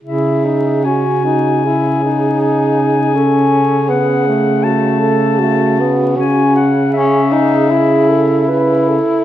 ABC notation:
X:1
M:4/4
L:1/8
Q:1/4=78
K:C#m
V:1 name="Clarinet"
e2 g4 g2- | g2 f2 a4 | g f e4- e z |]
V:2 name="Alto saxophone"
G2 F2 G4 | A2 G2 F A F2- | F z G2 G A B A |]
V:3 name="Tenor saxophone"
E D C D E D3 | C2 B, A,3 A, B, | C z C D E2 E2 |]
V:4 name="Baritone saxophone" clef=bass
C,8- | C,8 | C,6- C, z |]